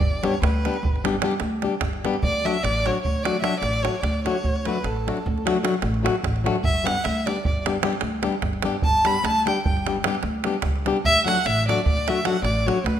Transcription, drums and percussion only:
0.01 davul low
0.24 davul high
0.34 davul high
0.43 davul high
0.65 davul high
0.74 davul high
0.85 davul low
0.96 davul high
1.05 davul high
1.22 davul high
1.31 davul high
1.40 davul high
1.62 davul high
1.73 davul high
1.81 davul high, davul low
1.93 davul high
2.05 davul high
2.14 davul high
2.23 davul low
2.46 davul high
2.56 davul high
2.65 davul high
2.86 davul high
2.95 davul high
3.05 davul low
3.16 davul high
3.25 davul high
3.44 davul high
3.53 davul high
3.63 davul high
3.85 davul high
3.95 davul high
4.03 davul high, davul low
4.14 davul high
4.26 davul high
4.35 davul high
4.44 davul low
4.56 davul high
4.65 davul high
4.76 davul high
4.84 davul high
4.96 davul high
5.08 davul high
5.17 davul high
5.27 davul low
5.38 davul high
5.47 davul high
5.57 davul high
5.65 davul high
5.74 davul high
5.82 davul high
5.94 davul high
6.06 davul high
6.15 davul high
6.24 davul high, davul low
6.36 davul high
6.46 davul high
6.56 davul high
6.64 davul low
6.87 davul high
6.97 davul high
7.05 davul high
7.27 davul high
7.36 davul high
7.45 davul low
7.66 davul high
7.83 davul high
7.93 davul high
8.01 davul high
8.23 davul high
8.32 davul high
8.42 davul high, davul low
8.53 davul high
8.62 davul high
8.73 davul high
8.82 davul low
9.05 davul high
9.14 davul high
9.25 davul high
9.47 davul high
9.65 davul low
9.77 davul high
9.87 davul high
10.04 davul high
10.15 davul high
10.23 davul high
10.44 davul high
10.54 davul high
10.62 davul high, davul low
10.76 davul high
10.86 davul high
10.97 davul high
11.06 davul low
11.28 davul high
11.37 davul high
11.46 davul high
11.69 davul high
11.78 davul high
11.86 davul low
11.97 davul high
12.08 davul high
12.25 davul high
12.36 davul high
12.45 davul high
12.68 davul high
12.78 davul high
12.86 davul high, davul low
12.97 davul high

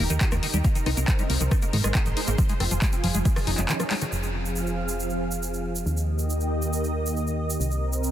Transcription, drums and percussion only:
0.10 closed hi-hat, shaker
0.21 kick, clap, closed hi-hat, shaker
0.32 cross-stick, closed hi-hat, shaker
0.43 open hi-hat
0.54 closed hi-hat, shaker
0.64 kick, closed hi-hat, shaker
0.75 closed hi-hat, shaker
0.86 cross-stick, open hi-hat
0.97 closed hi-hat, shaker
1.08 kick, clap, closed hi-hat, shaker
1.19 closed hi-hat, shaker
1.30 open hi-hat
1.41 closed hi-hat, shaker
1.51 kick, cross-stick, closed hi-hat, shaker
1.62 closed hi-hat, shaker
1.73 open hi-hat
1.84 cross-stick, closed hi-hat, shaker
1.95 kick, clap, closed hi-hat, shaker
2.06 closed hi-hat, shaker
2.17 open hi-hat
2.27 closed hi-hat, shaker
2.38 kick, closed hi-hat, shaker
2.49 closed hi-hat, shaker
2.60 cross-stick, open hi-hat
2.71 closed hi-hat, shaker
2.82 kick, clap, closed hi-hat, shaker
2.92 closed hi-hat, shaker
3.04 open hi-hat
3.14 closed hi-hat, shaker
3.25 kick, closed hi-hat, shaker
3.36 cross-stick, open hi-hat, shaker
3.47 open hi-hat
3.58 clap, closed hi-hat, shaker
3.69 clap, closed hi-hat, shaker
3.80 cross-stick, closed hi-hat, shaker
3.91 clap, open hi-hat
4.01 closed hi-hat, shaker
4.12 shaker
4.23 shaker
4.45 shaker
4.56 shaker
4.67 shaker
4.89 shaker
5.00 shaker
5.10 shaker
5.31 shaker
5.43 shaker
5.54 shaker
5.76 shaker
5.86 shaker
5.97 shaker
6.19 shaker
6.30 shaker
6.40 shaker
6.62 shaker
6.73 shaker
6.84 shaker
7.06 shaker
7.16 shaker
7.27 shaker
7.50 shaker
7.61 shaker
7.71 shaker
7.93 shaker
8.04 shaker

